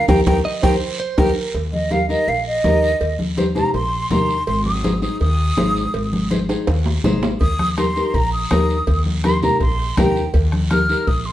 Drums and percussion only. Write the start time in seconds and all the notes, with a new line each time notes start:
0.09 bombo low, high conga, high timbale, long guiro
0.27 bombo low, high conga, high timbale, long guiro
0.63 bombo low, high conga, high timbale, long guiro
1.18 bombo low, high conga, high timbale, long guiro
1.55 cowbell, long guiro
1.73 high conga
1.91 cowbell, high conga, short guiro
2.10 short guiro
2.28 cowbell, long guiro
2.64 cowbell, high conga, low timbale, short guiro
2.83 short guiro
3.01 cowbell, long guiro
3.19 high conga
3.37 cowbell, high conga, short guiro
3.56 low conga, short guiro
3.74 cowbell, long guiro
4.11 cowbell, high conga, low conga, low timbale, short guiro
4.29 short guiro
4.47 cowbell, long guiro
4.66 high conga
4.84 cowbell, high conga, short guiro
5.02 short guiro
5.21 cowbell, long guiro
5.57 cowbell, high conga, low timbale, short guiro
5.76 short guiro
5.94 cowbell, long guiro
6.13 high conga
6.31 cowbell, high conga, short guiro
6.49 high timbale, short guiro
6.67 cowbell, high timbale, long guiro
6.86 low timbale
7.04 cowbell, high conga, low conga, low timbale, short guiro
7.23 low timbale, short guiro
7.41 bombo low, cowbell, long guiro
7.59 bombo rim, high conga
7.77 bombo rim, cowbell, high conga, short guiro
7.96 short guiro
8.14 bombo low, cowbell, long guiro
8.51 bombo rim, cowbell, high conga, low timbale, short guiro
8.69 short guiro
8.87 bombo low, cowbell, long guiro
9.06 high conga
9.24 bombo rim, cowbell, high conga, short guiro
9.43 low conga, short guiro
9.60 bombo low, cowbell, long guiro
9.97 bombo low, bombo rim, cowbell, high conga, low conga, low timbale, short guiro
10.16 short guiro
10.34 bombo low, cowbell, long guiro
10.52 bombo rim, high conga
10.70 bombo rim, cowbell, high conga, short guiro
10.89 short guiro
11.07 bombo low, cowbell, long guiro